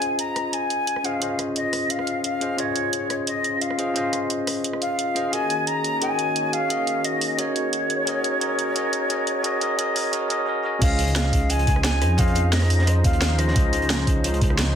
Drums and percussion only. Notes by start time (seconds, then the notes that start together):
0.02 closed hi-hat
0.19 closed hi-hat
0.36 cross-stick, closed hi-hat
0.53 closed hi-hat
0.70 closed hi-hat
0.87 closed hi-hat
0.96 cross-stick
1.04 closed hi-hat
1.22 closed hi-hat
1.39 cross-stick, closed hi-hat
1.56 closed hi-hat
1.73 cross-stick, open hi-hat
1.90 closed hi-hat
1.99 cross-stick
2.07 closed hi-hat
2.24 closed hi-hat
2.41 closed hi-hat
2.58 closed hi-hat
2.76 closed hi-hat
2.93 closed hi-hat
3.10 cross-stick, closed hi-hat
3.27 closed hi-hat
3.44 closed hi-hat
3.62 closed hi-hat
3.70 cross-stick
3.79 closed hi-hat
3.96 closed hi-hat
4.13 cross-stick, closed hi-hat
4.30 closed hi-hat
4.47 cross-stick, open hi-hat
4.64 closed hi-hat
4.73 cross-stick
4.82 closed hi-hat
4.99 closed hi-hat
5.16 closed hi-hat
5.33 closed hi-hat
5.50 closed hi-hat
5.67 closed hi-hat
5.84 closed hi-hat
6.02 closed hi-hat
6.19 closed hi-hat
6.36 closed hi-hat
6.53 closed hi-hat
6.70 closed hi-hat
6.87 closed hi-hat
7.04 closed hi-hat
7.21 open hi-hat
7.39 closed hi-hat
7.56 closed hi-hat
7.73 closed hi-hat
7.90 closed hi-hat
8.07 closed hi-hat
8.24 closed hi-hat
8.41 closed hi-hat
8.59 closed hi-hat
8.76 closed hi-hat
8.93 closed hi-hat
9.10 closed hi-hat
9.27 closed hi-hat
9.44 closed hi-hat
9.61 closed hi-hat
9.79 closed hi-hat
9.96 open hi-hat
10.13 closed hi-hat
10.30 closed hi-hat
10.82 kick, closed hi-hat, crash
10.99 closed hi-hat
11.08 closed hi-hat
11.15 snare, closed hi-hat
11.33 kick, closed hi-hat
11.50 closed hi-hat
11.59 closed hi-hat
11.67 kick, closed hi-hat
11.76 cross-stick
11.84 snare, closed hi-hat
12.02 cross-stick, closed hi-hat
12.18 kick, closed hi-hat
12.28 closed hi-hat
12.35 closed hi-hat
12.53 snare, closed hi-hat, open hi-hat
12.62 cross-stick
12.70 closed hi-hat, open hi-hat
12.79 snare
12.87 cross-stick, closed hi-hat
13.04 kick, closed hi-hat
13.13 closed hi-hat
13.21 snare, closed hi-hat
13.38 cross-stick, closed hi-hat
13.48 snare
13.56 kick, closed hi-hat
13.73 closed hi-hat
13.82 closed hi-hat
13.90 snare, closed hi-hat
14.07 kick, closed hi-hat
14.24 closed hi-hat
14.34 closed hi-hat
14.41 kick, closed hi-hat
14.50 cross-stick
14.59 snare, closed hi-hat